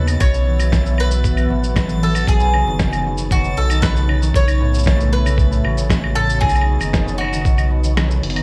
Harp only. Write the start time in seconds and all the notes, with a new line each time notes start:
Already playing: C#3
0.07 B2
0.19 F#3
0.32 B2
0.46 E3
0.59 F#3
0.85 B2
0.98 E3
1.11 F#3
1.50 B2
1.63 E3
1.76 F#3
1.89 B2
2.02 E3
2.15 F#3
2.41 B2
2.54 C#3
2.67 D#3
3.07 B2
3.19 C#3
3.32 D#3
3.45 B2
3.58 C#3
3.71 D#3
3.96 B2
4.08 C#3
4.22 D#3
4.60 A2
4.72 B2
4.86 C#3
4.99 A2
5.12 B2
5.25 C#3
5.51 A2
5.64 B2
5.77 C#3
6.15 A2
6.29 B2
6.42 D#3
6.55 B2
6.68 C#3
6.80 D#3
7.06 B2
7.19 C#3
7.32 D#3
7.71 B2
7.85 C#3
7.97 D#3
8.10 B2
8.23 C#3
8.35 D#3